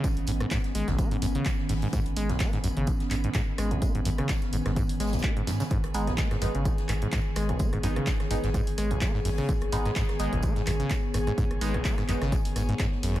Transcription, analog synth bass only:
X:1
M:4/4
L:1/16
Q:"Swing 16ths" 1/4=127
K:G#m
V:1 name="Analog synth bass" clef=bass
z G,,, G,,, z3 G,,, G,,, z2 G,,, z3 G,,, z | z G,,, G,,, z3 G,,, G,,, z2 G,,, z3 G,,, z | z G,,, G,,, z3 G,,, G,,, z2 G,,, z3 G,, z | z G,,, G,,, z3 G,,, G,,, z2 G,,, z3 G,,, z |
z G,,, G,,, z3 G,,, G,,, z2 G,,, z3 G,,, z | z G,,, G,,, z3 G,,, G,,, z2 G,,, z3 G,,, z | z G,,, G,,, z3 G,,, G,,, z2 G,,, z3 G,,, z |]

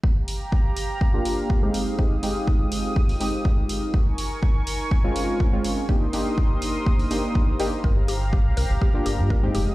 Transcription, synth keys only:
X:1
M:4/4
L:1/16
Q:"Swing 16ths" 1/4=123
K:Gphr
V:1 name="Synth keys"
z8 z [B,DFG]4 [A,CEG]3 | [A,CEG] z [A,CEG]8 [A,CEG]6 | z8 z [A,C_DF]4 [A,CDF]3 | [B,DEG] z [B,DEG]8 [B,DEG]4 [B,DEG] z |
z8 z [B,DFG]4 [A,CEG]3 |]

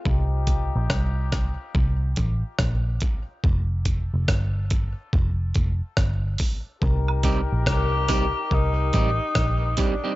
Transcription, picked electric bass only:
X:1
M:4/4
L:1/16
Q:"Swing 16ths" 1/4=71
K:Cdor
V:1 name="Picked electric bass" clef=bass
C,,3 B,,, C,,3 z C,,2 A,,, z B,,,2 z2 | F,,,3 F,,, G,,,3 z F,,,2 F,,, z G,,,2 z2 | C,,3 B,,, C,,3 z C,,2 A,,, z B,,,2 z2 |]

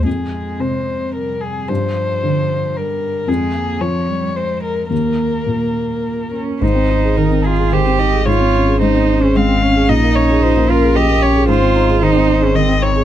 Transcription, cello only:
X:1
M:3/4
L:1/16
Q:1/4=111
K:Ab
V:1 name="Cello"
A,8 G,4 | F,2 F,6 G,4 | A,2 B,2 F,2 G,2 A,4 | B,8- B,2 D2 |
E6 F2 G4 | F4 E3 D C2 D2 | E6 F2 G4 | F4 E3 D C2 z2 |]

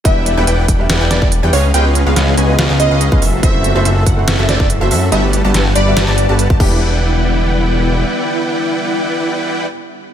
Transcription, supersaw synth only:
X:1
M:4/4
L:1/16
Q:"Swing 16ths" 1/4=142
K:Em
V:1 name="Supersaw synth"
[EBdfg]3 [EBdfg] [EBdfg]2 [EBdfg]2 [EBdfg] [EBdfg]2 [EBdfg]2 [EBdfg] [^C^GB^d^e]2 | [^C^GB^d^e]3 [CGBde] [CGBde]2 [CGBd^g]2 [CGBde] [CGBde]2 [CGBde]2 [CGBde] [FA=e]2 | [FAe]3 [FAe] [FAe]2 [FAf]2 [FAe] [FAe]2 [FAe]2 [FAe] [FAe]2 | [G,GBfa]3 [G,GBfa] [G,GBfa]2 [G,GBfb]2 [G,GBfa] [G,GBfa]2 [G,GBfa]2 [G,GBfa] [EBdfg]2- |
[EBdfg]16- | [EBdfg]16 |]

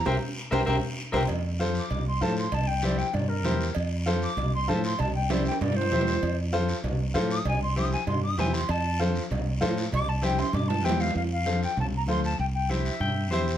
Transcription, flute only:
X:1
M:4/4
L:1/8
Q:1/4=195
K:F
V:1 name="Flute"
g z2 g g z2 g | z3 d'2 c' a c' | a g d g d B3 | z3 d'2 c' a c' |
a g d g d c3- | c z6 _e' | _a c' _e' a c' e' a c' | a2 z6 |
d' a g c' d' a g f | f f2 g a b c' a | g g e4- e z |]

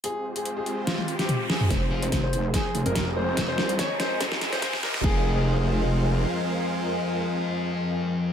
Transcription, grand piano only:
X:1
M:4/4
L:1/16
Q:"Swing 16ths" 1/4=144
K:Fm
V:1 name="Grand piano"
A2 z A z A2 z F2 z G2 z A2 | c2 z c z c2 z A2 z B2 z c2 | z c2 z d z c2 z3 c2 z B z | A16- |
A16 |]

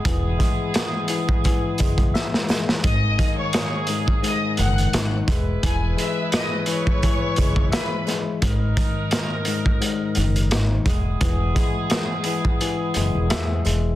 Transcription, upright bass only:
X:1
M:4/4
L:1/16
Q:"Swing 16ths" 1/4=86
K:Elyd
V:1 name="Upright bass" clef=bass
E,,,2 z8 F,,,2 z4 | G,,,2 z8 F,,,2 G,,,2 E,,,2 | E,,,2 z8 F,,,2 z4 | G,,,2 z8 F,,,2 G,,,2 E,,,2 |
E,,,2 z8 F,,, E,,, z2 E,,,2 |]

